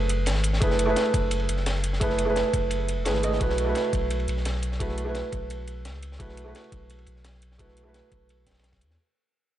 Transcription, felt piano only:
Already playing: A3 E4 G#4 B4
0.61 A3 E4 G#4 B4
0.86 A3 E4 G#4
0.90 B4
2.00 A3 E4 G#4 B4
2.25 A3 E4 G#4
2.30 B4
3.05 A3 E4 G#4 B4
3.22 A3 E4 G#4 D#5
3.40 A3 E4 F#4 B4
3.65 A3 E4 F#4
3.69 B4
4.79 A3 E4 F#4 B4
5.04 A3 E4 F#4
5.09 B4
6.19 A3 E4 F#4 B4
6.44 A3 E4 F#4
6.49 B4
7.58 A3 E4 F#4 B4
7.83 A3 E4 F#4
7.88 B4

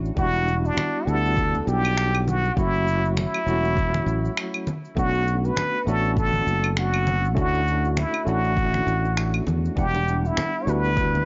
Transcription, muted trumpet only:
0.18 F#4
0.66 D4
1.08 A4
1.68 G4
2.29 F#4
2.59 E4
3.18 E4
4.99 F#4
5.46 B4
5.89 A4
6.19 A4
6.79 F#4
7.38 F#4
7.98 E4
8.28 F#4
9.80 G4
10.27 E4
10.63 C#5
10.70 B4

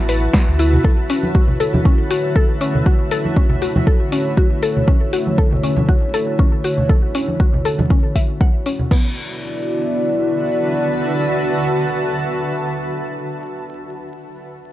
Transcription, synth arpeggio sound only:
0.09 B4
0.34 B3
0.59 E4
0.84 A4
1.10 C#4
1.35 F#4
1.60 A4
1.85 C#4
2.11 F#4
2.36 A4
2.61 C#4
2.86 F#4
3.11 A4
3.37 C#4
3.62 F#4
3.87 A4
4.12 C#4
4.37 F#4
4.63 A4
4.88 C#4
5.13 F#4
5.38 A4
5.63 C#4
5.89 F#4
6.14 A4
6.39 C#4
6.64 F#4
6.90 A4
7.15 C#4
7.40 F#4
7.65 A4
7.90 C#4
8.16 E5
8.41 F#5
8.66 C#4
8.91 B3

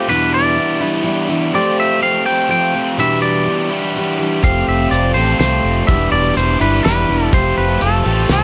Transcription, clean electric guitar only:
0.09 B4
0.34 D5
1.55 D5
1.80 E5
2.03 F5
2.26 G5
2.51 G5
3.00 E5
3.22 D5
4.44 F5
4.69 E5
4.91 D5
5.14 C5
5.39 C5
5.87 E5
6.12 D5
6.37 C5
6.61 B4
6.85 B4
7.34 C5
7.58 B4
7.82 A4
8.33 A4

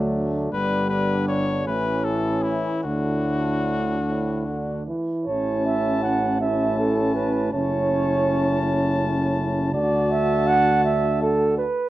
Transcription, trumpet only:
0.53 B4
0.89 B4
1.28 C#5
1.67 B4
2.04 A4
2.43 E4
2.84 F#4
5.27 A5
6.41 A5
7.53 A5
9.74 A5

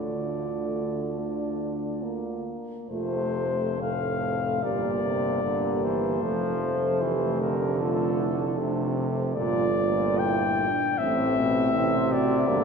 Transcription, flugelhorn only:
Already playing: D5
2.89 C5
3.81 F5
4.63 D5
5.84 C5
7.41 A#4
7.80 A4
9.35 D5
10.19 G5
10.98 E5
12.12 D5

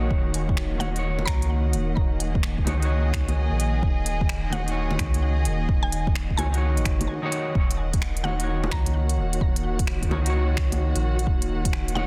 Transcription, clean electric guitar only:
Already playing: D#3 D#4 F#4 C#5
0.78 D#3 D#4 F#4
0.82 C#5
0.91 D#3 D#4
0.96 F#4 C#5
2.64 D#3 D#4 F#4 C#5
2.77 D#3 D#4
2.82 F#4 C#5
4.50 D#3 D#4 F#4 C#5
4.63 D#3 D#4
4.69 F#4 C#5
6.36 D#3 D#4 F#4 C#5
6.50 D#3 D#4
6.55 F#4 C#5
7.22 D#3 D#4 F#4 C#5
8.23 D#3 D#4 F#4
8.27 C#5
8.36 D#3 D#4
8.41 F#4 C#5
10.09 D#3 D#4 F#4 C#5
10.22 D#3 D#4
10.27 F#4 C#5
11.95 D#3 D#4 F#4
11.99 C#5

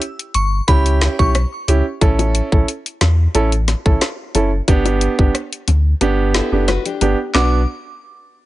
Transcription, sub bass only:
0.35 G1
0.68 C#2
1.19 B1
1.68 C#2
2.01 A1
2.52 A1
3.01 E2
3.35 A1
3.86 A1
4.35 F#1
4.68 G1
5.19 G1
5.68 D2
6.01 G1
6.52 F#1
7.01 G1
7.34 B1

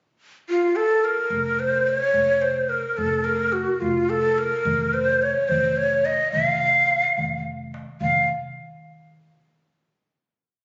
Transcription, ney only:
0.50 F4
0.76 A4
1.04 A#4
1.60 C5
1.88 C#5
2.42 C5
2.69 A#4
2.97 A4
3.24 A#4
3.52 F#4
3.81 F4
4.10 A4
4.38 A#4
4.94 C5
5.22 C#5
5.48 C5
5.77 C#5
6.05 D#5
6.32 F5
8.01 F5

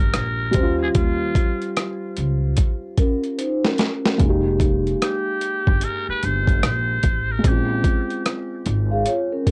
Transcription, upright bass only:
Already playing: G1
0.15 A#1
0.55 D#2
0.95 D#2
2.18 C#2
4.20 F1
5.68 G1
6.09 muted upright bass stroke
6.23 G1
6.64 A#1
7.04 A1
7.45 A#1
8.66 G#1

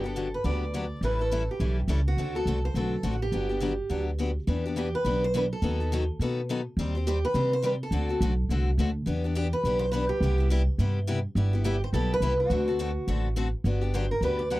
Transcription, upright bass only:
Already playing: G1
0.44 D2
1.01 A1
1.60 B1
1.88 C#2
2.17 D2
2.46 C2
2.74 B1
3.03 A1
3.32 G1
3.90 D2
4.47 E2
5.05 B1
5.62 D#2
6.19 B2
6.77 D#2
7.34 C3
7.91 D2
8.20 B1
8.49 C2
8.78 D2
9.06 E2
9.64 B1
10.21 C2
10.78 G2
11.35 G1
11.93 B1
12.20 C2
12.50 D2
13.07 A1
13.64 G1
14.21 D2

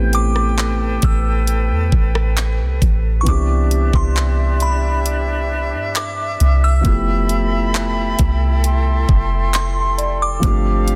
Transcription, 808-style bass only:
Already playing: A1
1.03 A1
1.70 E2
1.93 A1
2.60 C2
2.82 A1
3.27 C2
3.94 C2
5.73 G2
6.41 C2
6.85 F1
8.20 C2
9.09 F1
10.43 G1

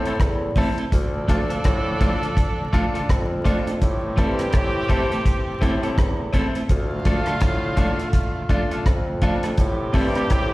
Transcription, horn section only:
Already playing: E3 C4 A4
0.92 F3 D4 A4
3.82 E3 C4 G4
6.70 D3 A3 F4
9.58 E3 C4 G4

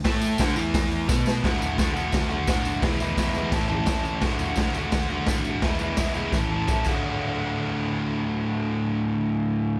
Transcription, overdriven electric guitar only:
0.05 A2 A3
0.40 D2 D3
0.56 E2 E3
1.08 B2 B3
1.43 D2 A2 D3 A3 F#4
1.60 D3 A3 F#4
1.77 A2 D3 A3 F#4
1.94 D3 A3 F#4
2.29 D3 A3 F#4
2.47 D2 A2 D3 A3 F#4
2.82 E2 B2 E3 G#3 B3 E4
3.00 E3 G#3 B3 E4
3.17 E3 G#3 B3 E4
3.33 E3 G#3 B3 E4
3.51 A2 E3 A3 C#4 E4 A4
3.69 A3 C#4 E4 A4
3.86 A2 E3 A3 C#4 E4 A4
4.21 D2 A2 D3 A3 F#4
4.39 D3 A3 F#4
4.57 A2 D3 A3 F#4
4.75 D3 A3 F#4
5.10 D3 A3 F#4
5.27 D2 A2 D3 A3 F#4
5.63 E2 B2 E3 G#3 B3 E4
5.80 E3 G#3 B3 E4
5.98 E3 G#3 B3 E4
6.14 E3 G#3 B3 E4
6.33 A2 E3 A3 C#4 E4 A4
6.50 A3 C#4 E4 A4
6.69 A2 E3 A3 C#4 E4 A4
6.85 D2 A2 D3 A3
6.89 F#4

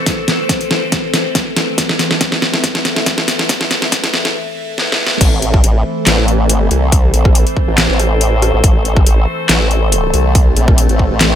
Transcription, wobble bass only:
5.21 A1
5.64 A1
6.07 A1
6.51 G#1
6.71 C2
7.14 A#1
7.68 A1
7.89 A1
8.54 A1
8.64 A1
9.06 A1
9.49 A1
10.14 C2
10.57 A#1
10.89 A1
11.11 A1

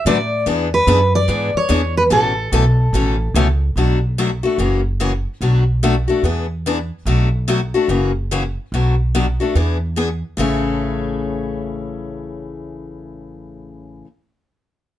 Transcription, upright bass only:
0.05 A2
0.46 E2
0.87 F#2
1.28 G#2
1.55 muted upright bass stroke
1.69 E2
2.11 A1
2.52 B1
2.93 A1
3.34 C#2
3.76 B1
4.58 F#1
5.41 B1
6.23 E2
7.05 B1
7.88 F#1
8.72 B1
9.55 E2
10.37 A1

